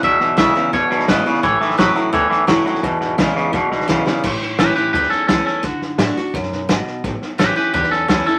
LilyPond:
<<
  \new Staff \with { instrumentName = "Clean electric guitar" } { \time 4/4 \key a \major \tempo 4 = 171 e''4 e''4 cis''4 b'4 | cis''4 b'4 cis''2 | r1 | r4 <g' b'>8 <g' b'>8 <g' b'>8 <cis' a'>8 <cis' a'>8 <cis' a'>8 |
fis'8 r2. r8 | r4 <g' b'>8 <g' b'>8 <g' b'>8 <cis' a'>8 <cis' a'>8 <cis' a'>8 | }
  \new Staff \with { instrumentName = "Steel-string acoustic guitar" } { \time 4/4 \key a \major << { r4 <e gis b e'>8 <b e'>8 r4 <e gis b e'>8 <b e'>8 | r4 <e a cis' e'>8 <cis' e'>8 r4 <e a cis' e'>8 <cis' e'>8 | r4 <e gis b e'>4 r4 <e gis b e'>8 <b e'>8 | r4 <e a cis' e'>8 <cis' e'>8 r4 <e a cis' e'>4 |
r4 <d a d' fis'>8 <d' fis'>8 r2 | r4 <e a cis' e'>8 <cis' e'>8 r4 <e a cis' e'>8 <cis' e'>8 | } \\ { e,2 b,2 | a,2 e,2 | e,2 b,2 | a,2 e,2 |
d2 fis,4 b,4 | a,2 e,2 | } >> }
  \new Staff \with { instrumentName = "Clean electric guitar" } { \clef bass \time 4/4 \key a \major <e, b,>8 <e, b,>8 <e, cis>8 <e, cis>8 <e, b,>8 <e, b,>8 <e, cis>8 <e, cis>8 | <a, e>8 <a, e>8 <a, fis>8 <a, fis>8 <a, e>8 <a, e>8 <a, fis>8 <a, fis>8 | <e, b,>8 <e, b,>8 <e, cis>8 <e, cis>8 <e, b,>8 <e, b,>8 <e, cis>8 <e, cis>8 | r1 |
r1 | r1 | }
  \new Staff \with { instrumentName = "Upright bass" } { \clef bass \time 4/4 \key a \major d,8 r8 b,,8 r8 d,8 cis,8 gis,,8 r8 | a,,8 r8 a,,8 r8 d,8 r8 fis,,8 r8 | e,,8 gis,,8 b,,8 r8 d,8 cis,8 b,,8 r8 | a,,8 r8 a,,8 r8 d,8 r8 cis,8 r8 |
d,8 fis,8 a,8 r8 b,8 b,8 gis,,8 r8 | a,,8 r8 a,,8 r8 d,8 r8 cis,8 r8 | }
  \new DrumStaff \with { instrumentName = "Drums" } \drummode { \time 4/4 <bd sn>8 sn8 <hhp bd sn>8 sn8 <bd sn>8 sn16 sn16 <hhp bd sn>8 sn16 sn16 | <bd sn>8 sn16 sn16 <hhp bd sn>8 sn8 <bd sn>8 sn8 <hhp bd sn>8 sn16 sn16 | <bd sn>8 sn8 <hhp bd sn>8 sn8 <bd sn>8 sn16 sn16 <hhp bd sn>8 sn8 | <cymc bd sn>8 sn8 <hhp sn>8 sn8 <bd sn>16 sn16 sn8 <hhp sn>8 sn8 |
<bd sn>8 sn8 <hhp sn>8 sn8 <bd sn>16 sn16 sn8 <hhp sn>8 sn8 | <bd sn>8 sn8 <hhp sn>8 sn8 <bd sn>16 sn16 sn8 <hhp sn>8 sn8 | }
>>